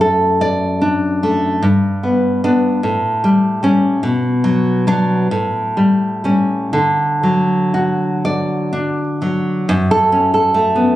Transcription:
0, 0, Header, 1, 2, 480
1, 0, Start_track
1, 0, Key_signature, 2, "major"
1, 0, Tempo, 811908
1, 965, Time_signature, 6, 3, 24, 8
1, 2883, Tempo, 891530
1, 3363, Tempo, 990099
1, 4803, Tempo, 956938
1, 5283, Tempo, 854701
1, 5992, End_track
2, 0, Start_track
2, 0, Title_t, "Nylon-string guitar"
2, 0, Program_c, 0, 24
2, 0, Note_on_c, 0, 42, 55
2, 0, Note_on_c, 0, 57, 39
2, 5, Note_on_c, 0, 69, 48
2, 243, Note_on_c, 0, 74, 63
2, 479, Note_off_c, 0, 57, 0
2, 482, Note_on_c, 0, 62, 47
2, 626, Note_off_c, 0, 74, 0
2, 725, Note_off_c, 0, 69, 0
2, 728, Note_on_c, 0, 57, 42
2, 940, Note_off_c, 0, 42, 0
2, 961, Note_on_c, 0, 43, 58
2, 964, Note_off_c, 0, 62, 0
2, 967, Note_off_c, 0, 57, 0
2, 1202, Note_on_c, 0, 59, 41
2, 1435, Note_off_c, 0, 59, 0
2, 1442, Note_on_c, 0, 59, 50
2, 1443, Note_on_c, 0, 62, 68
2, 1655, Note_off_c, 0, 43, 0
2, 1655, Note_off_c, 0, 59, 0
2, 1655, Note_off_c, 0, 62, 0
2, 1675, Note_on_c, 0, 45, 65
2, 1915, Note_on_c, 0, 55, 55
2, 2137, Note_off_c, 0, 55, 0
2, 2144, Note_on_c, 0, 55, 52
2, 2150, Note_on_c, 0, 61, 66
2, 2365, Note_off_c, 0, 55, 0
2, 2368, Note_off_c, 0, 61, 0
2, 2369, Note_off_c, 0, 45, 0
2, 2382, Note_on_c, 0, 47, 72
2, 2625, Note_on_c, 0, 54, 56
2, 2872, Note_off_c, 0, 54, 0
2, 2879, Note_on_c, 0, 54, 52
2, 2883, Note_on_c, 0, 62, 80
2, 3092, Note_off_c, 0, 47, 0
2, 3094, Note_off_c, 0, 54, 0
2, 3096, Note_off_c, 0, 62, 0
2, 3118, Note_on_c, 0, 45, 65
2, 3364, Note_on_c, 0, 55, 50
2, 3586, Note_off_c, 0, 55, 0
2, 3592, Note_on_c, 0, 55, 42
2, 3596, Note_on_c, 0, 61, 57
2, 3813, Note_off_c, 0, 55, 0
2, 3814, Note_off_c, 0, 45, 0
2, 3815, Note_off_c, 0, 61, 0
2, 3829, Note_on_c, 0, 50, 60
2, 4073, Note_on_c, 0, 54, 41
2, 4319, Note_on_c, 0, 66, 45
2, 4565, Note_on_c, 0, 74, 58
2, 4797, Note_on_c, 0, 62, 44
2, 4800, Note_off_c, 0, 54, 0
2, 4952, Note_off_c, 0, 74, 0
2, 5043, Note_on_c, 0, 54, 37
2, 5049, Note_off_c, 0, 66, 0
2, 5261, Note_off_c, 0, 50, 0
2, 5279, Note_off_c, 0, 54, 0
2, 5280, Note_off_c, 0, 62, 0
2, 5280, Note_on_c, 0, 42, 73
2, 5404, Note_on_c, 0, 69, 55
2, 5523, Note_on_c, 0, 61, 51
2, 5637, Note_off_c, 0, 69, 0
2, 5644, Note_on_c, 0, 69, 58
2, 5759, Note_on_c, 0, 57, 59
2, 5878, Note_on_c, 0, 59, 49
2, 5992, Note_off_c, 0, 42, 0
2, 5992, Note_off_c, 0, 57, 0
2, 5992, Note_off_c, 0, 59, 0
2, 5992, Note_off_c, 0, 61, 0
2, 5992, Note_off_c, 0, 69, 0
2, 5992, End_track
0, 0, End_of_file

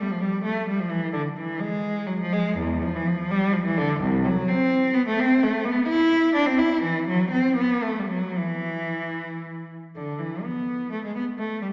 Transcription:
0, 0, Header, 1, 2, 480
1, 0, Start_track
1, 0, Tempo, 466200
1, 1175, Time_signature, 6, 3, 24, 8
1, 2140, Tempo, 497100
1, 3100, Tempo, 469851
1, 6940, Tempo, 499168
1, 7900, Tempo, 529568
1, 9820, Tempo, 480384
1, 11598, End_track
2, 0, Start_track
2, 0, Title_t, "Cello"
2, 0, Program_c, 0, 42
2, 114, Note_on_c, 0, 53, 70
2, 218, Note_on_c, 0, 55, 73
2, 227, Note_off_c, 0, 53, 0
2, 458, Note_off_c, 0, 55, 0
2, 462, Note_on_c, 0, 57, 75
2, 694, Note_off_c, 0, 57, 0
2, 704, Note_on_c, 0, 55, 69
2, 818, Note_off_c, 0, 55, 0
2, 823, Note_on_c, 0, 53, 74
2, 932, Note_on_c, 0, 52, 72
2, 939, Note_off_c, 0, 53, 0
2, 1164, Note_on_c, 0, 50, 84
2, 1172, Note_off_c, 0, 52, 0
2, 1246, Note_off_c, 0, 50, 0
2, 1404, Note_on_c, 0, 52, 65
2, 1643, Note_on_c, 0, 56, 81
2, 1645, Note_off_c, 0, 52, 0
2, 2127, Note_on_c, 0, 54, 68
2, 2134, Note_off_c, 0, 56, 0
2, 2252, Note_off_c, 0, 54, 0
2, 2254, Note_on_c, 0, 53, 80
2, 2376, Note_off_c, 0, 53, 0
2, 2380, Note_on_c, 0, 56, 92
2, 2625, Note_on_c, 0, 40, 83
2, 2627, Note_off_c, 0, 56, 0
2, 2859, Note_on_c, 0, 53, 81
2, 2862, Note_off_c, 0, 40, 0
2, 2980, Note_off_c, 0, 53, 0
2, 2985, Note_on_c, 0, 52, 78
2, 3099, Note_off_c, 0, 52, 0
2, 3101, Note_on_c, 0, 53, 81
2, 3337, Note_off_c, 0, 53, 0
2, 3341, Note_on_c, 0, 55, 97
2, 3566, Note_on_c, 0, 53, 78
2, 3573, Note_off_c, 0, 55, 0
2, 3687, Note_off_c, 0, 53, 0
2, 3691, Note_on_c, 0, 52, 82
2, 3808, Note_off_c, 0, 52, 0
2, 3819, Note_on_c, 0, 50, 93
2, 4058, Note_off_c, 0, 50, 0
2, 4061, Note_on_c, 0, 36, 89
2, 4297, Note_off_c, 0, 36, 0
2, 4298, Note_on_c, 0, 54, 88
2, 4539, Note_off_c, 0, 54, 0
2, 4546, Note_on_c, 0, 60, 90
2, 5006, Note_on_c, 0, 59, 87
2, 5016, Note_off_c, 0, 60, 0
2, 5129, Note_off_c, 0, 59, 0
2, 5144, Note_on_c, 0, 57, 89
2, 5257, Note_off_c, 0, 57, 0
2, 5268, Note_on_c, 0, 60, 95
2, 5502, Note_off_c, 0, 60, 0
2, 5510, Note_on_c, 0, 57, 86
2, 5730, Note_on_c, 0, 59, 94
2, 5740, Note_off_c, 0, 57, 0
2, 5968, Note_off_c, 0, 59, 0
2, 5977, Note_on_c, 0, 64, 98
2, 6442, Note_on_c, 0, 62, 85
2, 6445, Note_off_c, 0, 64, 0
2, 6559, Note_on_c, 0, 60, 82
2, 6567, Note_off_c, 0, 62, 0
2, 6684, Note_on_c, 0, 64, 92
2, 6689, Note_off_c, 0, 60, 0
2, 6935, Note_off_c, 0, 64, 0
2, 6941, Note_on_c, 0, 52, 81
2, 7169, Note_off_c, 0, 52, 0
2, 7183, Note_on_c, 0, 54, 85
2, 7409, Note_on_c, 0, 60, 83
2, 7410, Note_off_c, 0, 54, 0
2, 7647, Note_off_c, 0, 60, 0
2, 7651, Note_on_c, 0, 59, 78
2, 7895, Note_off_c, 0, 59, 0
2, 7897, Note_on_c, 0, 57, 71
2, 8017, Note_off_c, 0, 57, 0
2, 8046, Note_on_c, 0, 55, 69
2, 8152, Note_off_c, 0, 55, 0
2, 8154, Note_on_c, 0, 54, 66
2, 8383, Note_off_c, 0, 54, 0
2, 8400, Note_on_c, 0, 52, 72
2, 9599, Note_off_c, 0, 52, 0
2, 9829, Note_on_c, 0, 50, 54
2, 10052, Note_off_c, 0, 50, 0
2, 10062, Note_on_c, 0, 52, 48
2, 10302, Note_on_c, 0, 59, 57
2, 10307, Note_off_c, 0, 52, 0
2, 10791, Note_on_c, 0, 57, 48
2, 10792, Note_off_c, 0, 59, 0
2, 10910, Note_off_c, 0, 57, 0
2, 10919, Note_on_c, 0, 56, 54
2, 11026, Note_on_c, 0, 59, 58
2, 11033, Note_off_c, 0, 56, 0
2, 11106, Note_off_c, 0, 59, 0
2, 11248, Note_on_c, 0, 57, 62
2, 11487, Note_off_c, 0, 57, 0
2, 11489, Note_on_c, 0, 55, 53
2, 11539, Note_off_c, 0, 55, 0
2, 11598, End_track
0, 0, End_of_file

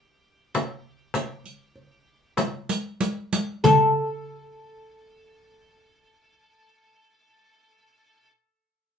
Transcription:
0, 0, Header, 1, 5, 480
1, 0, Start_track
1, 0, Tempo, 1204819
1, 944, Tempo, 1307190
1, 1415, Time_signature, 10, 3, 24, 8
1, 3374, End_track
2, 0, Start_track
2, 0, Title_t, "Oud"
2, 0, Program_c, 0, 24
2, 0, Note_on_c, 0, 67, 86
2, 928, Note_off_c, 0, 67, 0
2, 1410, Note_on_c, 0, 69, 77
2, 3122, Note_off_c, 0, 69, 0
2, 3374, End_track
3, 0, Start_track
3, 0, Title_t, "Darbuka"
3, 222, Note_on_c, 9, 63, 59
3, 261, Note_off_c, 9, 63, 0
3, 455, Note_on_c, 9, 63, 69
3, 495, Note_off_c, 9, 63, 0
3, 575, Note_on_c, 9, 62, 26
3, 615, Note_off_c, 9, 62, 0
3, 700, Note_on_c, 9, 62, 27
3, 739, Note_off_c, 9, 62, 0
3, 945, Note_on_c, 9, 63, 65
3, 981, Note_off_c, 9, 63, 0
3, 1417, Note_on_c, 9, 64, 72
3, 1453, Note_off_c, 9, 64, 0
3, 3374, End_track
4, 0, Start_track
4, 0, Title_t, "Frame drum"
4, 219, Note_on_c, 9, 64, 70
4, 259, Note_off_c, 9, 64, 0
4, 454, Note_on_c, 9, 64, 67
4, 494, Note_off_c, 9, 64, 0
4, 946, Note_on_c, 9, 64, 70
4, 983, Note_off_c, 9, 64, 0
4, 1411, Note_on_c, 9, 64, 78
4, 1448, Note_off_c, 9, 64, 0
4, 3374, End_track
5, 0, Start_track
5, 0, Title_t, "Riq"
5, 217, Note_on_c, 9, 54, 40
5, 257, Note_off_c, 9, 54, 0
5, 457, Note_on_c, 9, 54, 47
5, 497, Note_off_c, 9, 54, 0
5, 580, Note_on_c, 9, 54, 20
5, 619, Note_off_c, 9, 54, 0
5, 947, Note_on_c, 9, 54, 54
5, 984, Note_off_c, 9, 54, 0
5, 1063, Note_on_c, 9, 54, 63
5, 1100, Note_off_c, 9, 54, 0
5, 1177, Note_on_c, 9, 54, 72
5, 1214, Note_off_c, 9, 54, 0
5, 1295, Note_on_c, 9, 54, 83
5, 1332, Note_off_c, 9, 54, 0
5, 1413, Note_on_c, 9, 54, 83
5, 1450, Note_off_c, 9, 54, 0
5, 3374, End_track
0, 0, End_of_file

